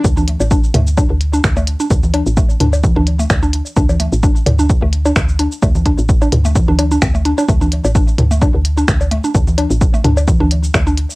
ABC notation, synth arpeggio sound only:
X:1
M:4/4
L:1/16
Q:"Swing 16ths" 1/4=129
K:C
V:1 name="Synth arpeggio sound"
z D z2 D z A, z D z2 D z A, z D | z2 D z A, z D z2 D z A, z D z2 | D z A, z D z2 D z A, z D z2 D z | A, z D z2 D z A, z D D D C A, D D |
A, D z2 D z2 A, D z2 D z2 A, D | z2 D z2 A, D z2 D z2 A, D z2 |]